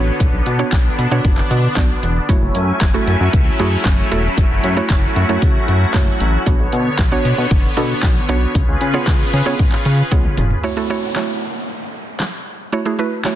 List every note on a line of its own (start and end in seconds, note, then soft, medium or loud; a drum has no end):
0.00 0.11 A1 loud
0.00 2.25 D3 medium
0.00 0.46 B3 loud
0.00 2.25 B3 medium
0.00 0.46 D4 medium
0.00 0.46 F#4 medium
0.00 0.16 C#5 medium
0.00 0.46 C#5 loud
0.20 0.29 B1 loud
0.20 2.27 D4 medium
0.20 kick loud
0.20 closed hi-hat medium
0.33 0.42 B1 loud
0.46 0.63 B2 loud
0.46 closed hi-hat medium
0.59 1.01 B3 medium
0.59 1.01 D4 medium
0.59 1.01 F#4 medium
0.59 1.01 C#5 loud
0.72 0.89 B1 medium
0.72 kick loud
0.72 snare medium
0.72 clap loud
0.72 closed hi-hat medium
0.99 1.07 B2 loud
0.99 closed hi-hat soft
1.11 1.20 B2 medium
1.11 1.64 B3 medium
1.11 1.64 D4 medium
1.11 1.64 F#4 medium
1.11 1.64 C#5 loud
1.25 1.42 F#1 medium
1.25 kick loud
1.25 closed hi-hat medium
1.38 clap medium
1.51 1.68 B2 loud
1.51 closed hi-hat soft
1.76 1.94 B1 medium
1.76 2.19 B3 medium
1.76 2.19 D4 medium
1.76 2.19 F#4 medium
1.76 2.19 D5 medium
1.76 kick loud
1.76 snare loud
1.76 clap loud
1.76 closed hi-hat medium
2.03 2.20 E1 medium
2.03 closed hi-hat medium
2.29 2.37 F#1 loud
2.29 6.42 F#3 medium
2.29 6.42 A3 medium
2.29 2.81 A3 medium
2.29 6.42 C#4 medium
2.29 2.81 E4 medium
2.29 6.42 E4 medium
2.29 2.81 F#4 medium
2.29 2.81 C#5 medium
2.29 4.36 G#5 medium
2.29 kick loud
2.29 closed hi-hat medium
2.42 2.51 F#1 medium
2.55 2.72 F#2 loud
2.55 closed hi-hat medium
2.81 2.98 F#1 loud
2.81 kick loud
2.81 snare medium
2.81 clap loud
2.81 closed hi-hat medium
2.94 3.46 A3 medium
2.94 3.46 E4 medium
2.94 3.46 F#4 medium
2.94 3.47 A4 loud
3.07 3.16 F#2 loud
3.07 closed hi-hat medium
3.21 3.29 F#2 loud
3.33 3.50 C#2 medium
3.33 kick loud
3.33 closed hi-hat medium
3.59 3.77 F#2 loud
3.59 4.01 A3 medium
3.59 4.01 E4 medium
3.59 4.01 F#4 medium
3.59 4.01 G#4 loud
3.59 closed hi-hat soft
3.85 4.02 F#1 loud
3.85 kick loud
3.85 snare medium
3.85 clap loud
3.85 closed hi-hat medium
4.12 4.29 E1 medium
4.12 4.64 A3 medium
4.12 4.64 E4 medium
4.12 4.64 F#4 medium
4.12 4.64 A4 loud
4.12 closed hi-hat medium
4.37 4.46 F#1 loud
4.37 6.44 F#4 medium
4.37 kick loud
4.37 closed hi-hat medium
4.51 4.59 F#1 loud
4.64 4.81 F#2 loud
4.64 closed hi-hat medium
4.77 5.19 A3 loud
4.77 5.19 E4 medium
4.77 5.19 F#4 medium
4.77 5.19 C#5 loud
4.90 5.07 F#1 loud
4.90 kick loud
4.90 snare medium
4.90 clap loud
4.90 closed hi-hat medium
5.16 5.25 F#2 loud
5.16 closed hi-hat soft
5.29 5.38 F#2 medium
5.29 5.81 A3 medium
5.29 5.81 E4 medium
5.29 5.81 F#4 medium
5.29 5.81 C#5 loud
5.42 5.59 C#2 medium
5.42 kick loud
5.42 closed hi-hat medium
5.68 5.85 F#2 medium
5.68 closed hi-hat soft
5.94 6.11 F#1 medium
5.94 6.36 A3 medium
5.94 6.36 E4 medium
5.94 6.36 F#4 medium
5.94 6.36 C#5 medium
5.94 kick loud
5.94 snare medium
5.94 clap loud
5.94 closed hi-hat medium
6.20 6.37 A1 medium
6.20 closed hi-hat medium
6.46 6.55 B1 loud
6.46 8.53 D3 medium
6.46 6.98 B3 medium
6.46 8.53 B3 medium
6.46 6.99 D4 medium
6.46 6.99 F#4 medium
6.46 8.53 C#5 medium
6.46 6.99 C#5 medium
6.46 kick loud
6.46 closed hi-hat medium
6.60 6.68 B1 loud
6.72 6.90 B2 loud
6.72 closed hi-hat medium
6.99 7.16 B1 loud
6.99 kick loud
6.99 snare medium
6.99 clap loud
6.99 closed hi-hat medium
7.12 7.64 B3 loud
7.12 7.64 D4 medium
7.12 7.64 F#4 medium
7.12 7.64 C#5 loud
7.25 7.33 B2 loud
7.25 closed hi-hat soft
7.38 7.47 B2 loud
7.51 7.68 F#1 medium
7.51 kick loud
7.51 closed hi-hat medium
7.77 7.94 B2 loud
7.77 8.19 B3 medium
7.77 8.19 D4 medium
7.77 8.19 F#4 medium
7.77 8.19 A4 loud
7.77 closed hi-hat soft
8.03 8.20 B1 loud
8.03 kick loud
8.03 snare medium
8.03 clap loud
8.03 closed hi-hat medium
8.29 8.46 B1 medium
8.29 8.55 B3 loud
8.29 8.55 D4 medium
8.29 8.55 F#4 medium
8.29 8.55 C#5 loud
8.29 closed hi-hat medium
8.55 8.64 C#2 loud
8.55 10.62 C#3 medium
8.55 10.62 C#4 medium
8.55 10.62 F4 medium
8.55 10.62 G#4 medium
8.55 10.62 B4 medium
8.55 kick loud
8.55 closed hi-hat medium
8.68 8.77 C#2 medium
8.81 8.98 C#3 loud
8.81 closed hi-hat medium
8.94 9.36 B3 loud
8.94 9.36 F4 medium
8.94 9.36 G#4 medium
8.94 9.36 C#5 loud
9.07 9.24 C#2 loud
9.07 kick loud
9.07 snare medium
9.07 clap loud
9.07 closed hi-hat medium
9.33 9.42 C#3 loud
9.33 closed hi-hat soft
9.46 9.55 C#3 loud
9.46 9.98 B3 medium
9.46 9.98 F4 medium
9.46 9.98 G#4 medium
9.46 9.99 C#5 medium
9.59 9.76 G#1 medium
9.59 kick loud
9.59 closed hi-hat medium
9.72 clap medium
9.85 10.03 C#3 loud
9.85 closed hi-hat soft
10.11 10.29 C#2 medium
10.11 10.53 B3 medium
10.11 10.53 F4 medium
10.11 10.53 G#4 medium
10.11 10.53 C#5 medium
10.11 kick loud
10.11 closed hi-hat medium
10.11 high tom medium
10.25 mid tom medium
10.37 10.55 F1 medium
10.37 closed hi-hat medium
10.37 mid tom medium
10.51 floor tom medium
10.64 10.74 A3 medium
10.64 10.74 E4 medium
10.64 10.74 F#4 medium
10.64 10.74 C#5 loud
10.64 downlifter medium
10.77 10.87 A3 medium
10.77 10.87 E4 medium
10.77 10.87 F#4 medium
10.77 10.87 A4 medium
10.90 11.11 A3 loud
10.90 11.11 E4 medium
10.90 11.11 F#4 medium
10.90 11.11 C#5 loud
11.16 11.99 A3 medium
11.16 11.99 E4 medium
11.16 12.00 F#4 medium
11.16 12.00 C#5 loud
11.16 snare medium
11.16 clap loud
12.20 snare medium
12.20 clap loud
12.72 12.83 A3 medium
12.72 12.83 E4 medium
12.72 12.83 F#4 medium
12.72 12.83 C#5 loud
12.85 12.96 A3 medium
12.85 12.96 E4 medium
12.85 12.96 F#4 medium
12.85 12.96 G#4 loud
12.99 13.20 A3 loud
12.99 13.20 E4 medium
12.99 13.20 F#4 medium
12.99 13.20 B4 loud
13.24 13.35 A3 loud
13.24 13.35 E4 medium
13.24 13.35 F#4 medium
13.24 13.35 C#5 loud
13.24 snare medium
13.24 clap loud